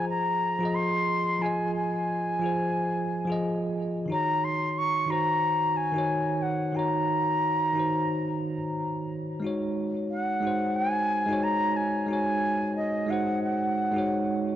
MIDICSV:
0, 0, Header, 1, 3, 480
1, 0, Start_track
1, 0, Tempo, 666667
1, 1027, Time_signature, 4, 2, 24, 8
1, 10482, End_track
2, 0, Start_track
2, 0, Title_t, "Flute"
2, 0, Program_c, 0, 73
2, 59, Note_on_c, 0, 82, 102
2, 535, Note_on_c, 0, 84, 109
2, 546, Note_off_c, 0, 82, 0
2, 1018, Note_on_c, 0, 80, 95
2, 1029, Note_off_c, 0, 84, 0
2, 1256, Note_off_c, 0, 80, 0
2, 1260, Note_on_c, 0, 80, 91
2, 2675, Note_off_c, 0, 80, 0
2, 2962, Note_on_c, 0, 82, 104
2, 3193, Note_on_c, 0, 84, 107
2, 3204, Note_off_c, 0, 82, 0
2, 3437, Note_on_c, 0, 85, 111
2, 3448, Note_off_c, 0, 84, 0
2, 3670, Note_on_c, 0, 82, 107
2, 3681, Note_off_c, 0, 85, 0
2, 4147, Note_on_c, 0, 80, 102
2, 4158, Note_off_c, 0, 82, 0
2, 4620, Note_on_c, 0, 78, 86
2, 4630, Note_off_c, 0, 80, 0
2, 4864, Note_on_c, 0, 82, 104
2, 4875, Note_off_c, 0, 78, 0
2, 6305, Note_off_c, 0, 82, 0
2, 7273, Note_on_c, 0, 78, 95
2, 7744, Note_on_c, 0, 80, 103
2, 7755, Note_off_c, 0, 78, 0
2, 8230, Note_on_c, 0, 82, 112
2, 8240, Note_off_c, 0, 80, 0
2, 8466, Note_on_c, 0, 80, 97
2, 8476, Note_off_c, 0, 82, 0
2, 8706, Note_off_c, 0, 80, 0
2, 8710, Note_on_c, 0, 80, 101
2, 9160, Note_off_c, 0, 80, 0
2, 9185, Note_on_c, 0, 75, 94
2, 9427, Note_on_c, 0, 78, 88
2, 9438, Note_off_c, 0, 75, 0
2, 9662, Note_off_c, 0, 78, 0
2, 9666, Note_on_c, 0, 78, 86
2, 10358, Note_off_c, 0, 78, 0
2, 10482, End_track
3, 0, Start_track
3, 0, Title_t, "Tine electric piano"
3, 0, Program_c, 1, 4
3, 0, Control_c, 1, 64, 127
3, 0, Note_on_c, 1, 53, 72
3, 0, Note_on_c, 1, 65, 68
3, 0, Note_on_c, 1, 68, 68
3, 0, Note_on_c, 1, 72, 82
3, 0, Note_on_c, 1, 75, 79
3, 399, Note_off_c, 1, 53, 0
3, 407, Note_off_c, 1, 65, 0
3, 415, Note_off_c, 1, 68, 0
3, 422, Note_off_c, 1, 72, 0
3, 422, Note_on_c, 1, 53, 89
3, 436, Note_on_c, 1, 65, 81
3, 454, Note_on_c, 1, 68, 82
3, 469, Note_off_c, 1, 75, 0
3, 469, Note_on_c, 1, 75, 99
3, 991, Note_off_c, 1, 53, 0
3, 998, Note_off_c, 1, 65, 0
3, 1005, Note_on_c, 1, 53, 70
3, 1007, Note_off_c, 1, 68, 0
3, 1014, Note_off_c, 1, 75, 0
3, 1021, Note_on_c, 1, 65, 71
3, 1038, Note_on_c, 1, 68, 68
3, 1050, Note_on_c, 1, 75, 79
3, 1711, Note_off_c, 1, 53, 0
3, 1719, Note_off_c, 1, 65, 0
3, 1724, Note_on_c, 1, 53, 79
3, 1728, Note_off_c, 1, 68, 0
3, 1734, Note_off_c, 1, 75, 0
3, 1739, Note_on_c, 1, 65, 64
3, 1756, Note_on_c, 1, 68, 65
3, 1770, Note_on_c, 1, 72, 83
3, 2320, Note_off_c, 1, 53, 0
3, 2327, Note_off_c, 1, 65, 0
3, 2336, Note_off_c, 1, 68, 0
3, 2343, Note_off_c, 1, 72, 0
3, 2343, Note_on_c, 1, 53, 87
3, 2357, Note_on_c, 1, 65, 78
3, 2374, Note_on_c, 1, 68, 84
3, 2389, Note_on_c, 1, 75, 100
3, 2911, Note_off_c, 1, 53, 0
3, 2919, Note_off_c, 1, 65, 0
3, 2921, Note_on_c, 1, 51, 71
3, 2927, Note_off_c, 1, 68, 0
3, 2935, Note_off_c, 1, 75, 0
3, 2937, Note_on_c, 1, 63, 69
3, 2950, Note_on_c, 1, 66, 69
3, 2955, Control_c, 1, 64, 0
3, 2967, Note_on_c, 1, 73, 80
3, 3103, Control_c, 1, 64, 127
3, 3629, Note_off_c, 1, 51, 0
3, 3637, Note_off_c, 1, 63, 0
3, 3642, Note_on_c, 1, 51, 72
3, 3644, Note_off_c, 1, 66, 0
3, 3652, Note_off_c, 1, 73, 0
3, 3657, Note_on_c, 1, 63, 67
3, 3671, Note_on_c, 1, 66, 73
3, 3687, Note_on_c, 1, 72, 83
3, 4239, Note_off_c, 1, 51, 0
3, 4246, Note_off_c, 1, 63, 0
3, 4253, Note_off_c, 1, 66, 0
3, 4260, Note_on_c, 1, 51, 89
3, 4261, Note_off_c, 1, 72, 0
3, 4275, Note_on_c, 1, 63, 80
3, 4291, Note_on_c, 1, 66, 82
3, 4308, Note_on_c, 1, 73, 96
3, 4830, Note_off_c, 1, 51, 0
3, 4838, Note_off_c, 1, 63, 0
3, 4842, Note_on_c, 1, 51, 71
3, 4846, Note_off_c, 1, 66, 0
3, 4854, Note_off_c, 1, 73, 0
3, 4857, Note_on_c, 1, 63, 67
3, 4872, Note_on_c, 1, 66, 71
3, 4888, Note_on_c, 1, 73, 77
3, 5550, Note_off_c, 1, 51, 0
3, 5557, Note_off_c, 1, 63, 0
3, 5565, Note_off_c, 1, 66, 0
3, 5568, Note_on_c, 1, 51, 70
3, 5573, Note_off_c, 1, 73, 0
3, 5583, Note_on_c, 1, 63, 65
3, 5597, Note_on_c, 1, 66, 67
3, 5614, Note_on_c, 1, 72, 80
3, 6162, Note_off_c, 1, 51, 0
3, 6169, Note_off_c, 1, 63, 0
3, 6176, Note_off_c, 1, 66, 0
3, 6185, Note_off_c, 1, 72, 0
3, 6766, Note_on_c, 1, 56, 76
3, 6784, Note_on_c, 1, 63, 66
3, 6796, Control_c, 1, 64, 0
3, 6800, Note_on_c, 1, 66, 66
3, 6815, Note_on_c, 1, 73, 83
3, 6912, Control_c, 1, 64, 127
3, 7472, Note_off_c, 1, 56, 0
3, 7481, Note_off_c, 1, 63, 0
3, 7489, Note_off_c, 1, 66, 0
3, 7491, Note_on_c, 1, 56, 76
3, 7496, Note_off_c, 1, 73, 0
3, 7506, Note_on_c, 1, 63, 65
3, 7522, Note_on_c, 1, 66, 65
3, 7537, Note_on_c, 1, 72, 86
3, 8083, Note_off_c, 1, 56, 0
3, 8091, Note_off_c, 1, 63, 0
3, 8099, Note_off_c, 1, 66, 0
3, 8106, Note_off_c, 1, 72, 0
3, 8109, Note_on_c, 1, 56, 89
3, 8125, Note_on_c, 1, 63, 81
3, 8139, Note_on_c, 1, 66, 78
3, 8156, Note_on_c, 1, 73, 99
3, 8675, Note_off_c, 1, 56, 0
3, 8683, Note_off_c, 1, 63, 0
3, 8687, Note_on_c, 1, 56, 74
3, 8690, Note_off_c, 1, 66, 0
3, 8698, Note_off_c, 1, 73, 0
3, 8701, Note_on_c, 1, 63, 66
3, 8718, Note_on_c, 1, 66, 67
3, 8734, Note_on_c, 1, 73, 81
3, 9392, Note_off_c, 1, 56, 0
3, 9399, Note_off_c, 1, 63, 0
3, 9405, Note_on_c, 1, 56, 77
3, 9408, Note_off_c, 1, 66, 0
3, 9416, Note_off_c, 1, 73, 0
3, 9421, Note_on_c, 1, 63, 71
3, 9436, Note_on_c, 1, 66, 73
3, 9450, Note_on_c, 1, 72, 83
3, 10000, Note_off_c, 1, 56, 0
3, 10008, Note_off_c, 1, 63, 0
3, 10016, Note_off_c, 1, 66, 0
3, 10023, Note_off_c, 1, 72, 0
3, 10023, Note_on_c, 1, 56, 87
3, 10036, Note_on_c, 1, 63, 80
3, 10054, Note_on_c, 1, 66, 85
3, 10068, Note_on_c, 1, 73, 96
3, 10482, Note_off_c, 1, 56, 0
3, 10482, Note_off_c, 1, 63, 0
3, 10482, Note_off_c, 1, 66, 0
3, 10482, Note_off_c, 1, 73, 0
3, 10482, End_track
0, 0, End_of_file